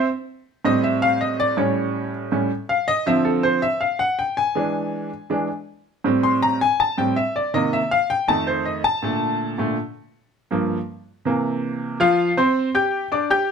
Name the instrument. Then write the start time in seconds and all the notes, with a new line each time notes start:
upright piano
0.65 A2 G3 C4 D#5
0.84 E5
1.02 F5
1.21 D#5
1.40 D5
1.57 A2 G3 C#4 C#5
2.32 A2 G3 C#4
2.69 F5
2.88 D#5
3.06 D3 F3 C4 E5
3.25 A4
3.43 C5
3.62 E5
3.81 F5
3.99 F#5
4.19 G5
4.37 G#5
4.55 E3 G#3 D4
5.30 E3 G#3 D4
6.04 A2 G3 C4
6.23 C6
6.42 A#5
6.61 G#5
6.80 A5
6.98 A2 G3 C4 G5
7.16 E5
7.36 D5
7.54 C3 D#3 A#3 D#5
7.73 E5
7.91 F5
8.10 G5
8.28 F2 D#3 A3 A5
8.47 C5
8.65 D#5
8.84 A5
9.02 A#2 D3 A3
9.58 A#2 D3 A3
10.51 G2 F3 A#3
11.25 C3 E3 A#3
12.00 F3 F4 F5
12.37 C4 C5 C6
12.75 G4 G5 G6
13.12 D4 D5 D6
13.30 G4 G5 G6